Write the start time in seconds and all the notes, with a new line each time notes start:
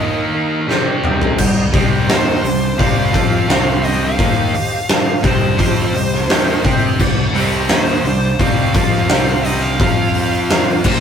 Already playing: D#3 D#4
0.00 A#3 D#4 A#4 D#5
0.34 D#4 A#4 F5
0.67 C3 G3 C4 G4 C5 D#5, snare
1.04 G4 C5 D#5, mid tom
1.22 floor tom
1.36 C2 C3 G3 G4 C5 D#5, kick, crash
1.72 C2 C3 G3 C4 G4 C5 D#5, kick, open hi-hat
2.07 D#2 D#3 A#3 D#4 G4 C5 D#5, snare, open hi-hat
2.42 C2 C3 G3 G4 C5 D5, open hi-hat
2.78 C2 C3 G3 C4 G4 C5 D5 F5, kick, open hi-hat
3.12 F2 F3 C4 F4 G4 C5 D#5, kick, open hi-hat
3.48 C2 C3 G3 C4 G4 C5 F5, snare, open hi-hat
3.83 G4 C5 D#5, open hi-hat
4.05 F5
4.16 D#2 D#3 A#3 D#4 G4 C5 F5, kick, open hi-hat
4.53 G4 C5 D#5, open hi-hat
4.88 G4 C5 F5, snare, open hi-hat
5.22 C2 C3 G3 C4 G4 C5 D#5, kick, open hi-hat
5.27 C5
5.58 F2 F3 C4 F4 G4 C5 D#5, kick, open hi-hat
5.92 C2 C3 G3 G4 C5 D#5, open hi-hat
6.13 snare
6.28 D#2 D#3 A#3 D#4 G4 C5, snare, open hi-hat
6.32 F5
6.65 C3 C4 G4 C5 D#5, kick, open hi-hat
6.99 C2 C3 G3 G4 C5 D5, kick, crash
7.32 C2 C3 G3 C4, open hi-hat
7.37 G4 C5 D#5
7.68 D#2 D#3 A#3 D#4 G4 C5, snare, open hi-hat
7.74 C5 D#5
8.04 C2 C3 G3 G4 C5, open hi-hat
8.08 D5
8.39 C2 C3 G3 C4 G4 C5 F5, kick, open hi-hat
8.43 D#5
8.74 F2 F3 C4 F4 G4 C5 D#5, kick, open hi-hat
8.93 snare
9.09 C2 C3 G3 C4 G4, snare, open hi-hat
9.13 C5 F5
9.45 D#5, open hi-hat
9.50 G4 C5 D#5
9.62 F5
9.80 F2 F3 C4 F4 C5 F5, kick, open hi-hat
10.14 C5, open hi-hat
10.18 F4 F5
10.50 F4 C5 F5, snare, open hi-hat
10.84 A#2 A#3 F4 G4 A#4 C5 D#5, kick, crash